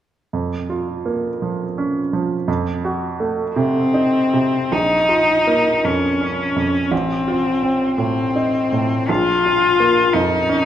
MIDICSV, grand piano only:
0, 0, Header, 1, 2, 480
1, 0, Start_track
1, 0, Key_signature, -5, "minor"
1, 0, Tempo, 738916
1, 212, Time_signature, 6, 3, 24, 8
1, 690, Tempo, 710900
1, 2130, Tempo, 753769
1, 4050, Tempo, 719424
1, 5970, Tempo, 700935
1, 7041, End_track
2, 0, Start_track
2, 0, Title_t, "Grand piano"
2, 0, Program_c, 0, 0
2, 216, Note_on_c, 0, 41, 29
2, 329, Control_c, 0, 64, 127
2, 452, Note_on_c, 0, 65, 24
2, 686, Note_on_c, 0, 58, 22
2, 834, Note_off_c, 0, 65, 0
2, 931, Note_on_c, 0, 53, 23
2, 1070, Note_off_c, 0, 58, 0
2, 1174, Note_on_c, 0, 61, 28
2, 1311, Note_off_c, 0, 53, 0
2, 1412, Note_on_c, 0, 53, 29
2, 1551, Note_off_c, 0, 61, 0
2, 1618, Note_off_c, 0, 41, 0
2, 1646, Note_on_c, 0, 41, 37
2, 1647, Note_off_c, 0, 53, 0
2, 1657, Control_c, 0, 64, 0
2, 1759, Control_c, 0, 64, 127
2, 1894, Note_on_c, 0, 66, 32
2, 2133, Note_on_c, 0, 57, 29
2, 2275, Note_off_c, 0, 66, 0
2, 2364, Note_on_c, 0, 48, 36
2, 2510, Note_off_c, 0, 57, 0
2, 2604, Note_on_c, 0, 63, 33
2, 2755, Note_off_c, 0, 48, 0
2, 2856, Note_on_c, 0, 48, 29
2, 3005, Note_off_c, 0, 63, 0
2, 3078, Note_off_c, 0, 41, 0
2, 3101, Note_on_c, 0, 34, 29
2, 3102, Note_off_c, 0, 48, 0
2, 3114, Control_c, 0, 64, 0
2, 3239, Control_c, 0, 64, 127
2, 3335, Note_on_c, 0, 65, 25
2, 3580, Note_on_c, 0, 58, 25
2, 3722, Note_off_c, 0, 65, 0
2, 3817, Note_on_c, 0, 41, 26
2, 3958, Note_off_c, 0, 58, 0
2, 4048, Note_on_c, 0, 61, 28
2, 4192, Note_off_c, 0, 41, 0
2, 4285, Note_on_c, 0, 41, 26
2, 4428, Note_off_c, 0, 61, 0
2, 4497, Note_off_c, 0, 34, 0
2, 4521, Note_on_c, 0, 33, 29
2, 4522, Note_off_c, 0, 41, 0
2, 4535, Control_c, 0, 64, 0
2, 4629, Control_c, 0, 64, 127
2, 4762, Note_on_c, 0, 65, 28
2, 4995, Note_on_c, 0, 60, 25
2, 5139, Note_off_c, 0, 65, 0
2, 5230, Note_on_c, 0, 45, 26
2, 5377, Note_off_c, 0, 60, 0
2, 5482, Note_on_c, 0, 63, 28
2, 5624, Note_off_c, 0, 45, 0
2, 5726, Note_on_c, 0, 45, 26
2, 5877, Note_off_c, 0, 63, 0
2, 5943, Note_off_c, 0, 33, 0
2, 5972, Note_off_c, 0, 45, 0
2, 5974, Note_on_c, 0, 34, 34
2, 5985, Control_c, 0, 64, 0
2, 6103, Control_c, 0, 64, 127
2, 6224, Note_on_c, 0, 65, 30
2, 6458, Note_on_c, 0, 58, 27
2, 6600, Note_off_c, 0, 65, 0
2, 6692, Note_on_c, 0, 41, 29
2, 6837, Note_off_c, 0, 58, 0
2, 6931, Note_on_c, 0, 61, 31
2, 7041, Note_off_c, 0, 34, 0
2, 7041, Note_off_c, 0, 41, 0
2, 7041, Note_off_c, 0, 61, 0
2, 7041, End_track
0, 0, End_of_file